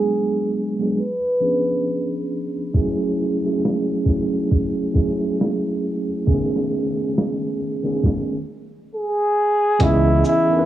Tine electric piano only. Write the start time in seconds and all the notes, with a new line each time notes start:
Already playing: F#3 G#3 B3 D4 G#4
0.79 F#3 G#3 B3 D4 G#4
1.40 F3 B3 C#4 D4 G#4
2.74 F#3 A3 C#4 E4 G#4
3.43 F#3 A3 C#4 E4 G#4
4.07 F#3 A3 C#4 E4 G#4
4.93 F#3 A3 C#4 E4 G#4
6.26 C#3 A3 B3 C#4 G#4
6.32 D#3
7.84 D#3 A3 B3 C#4 G#4
9.79 E3 B3 C#4 G#4 D#5
10.49 E3 B3 C#4 D#4 A#4
10.59 B4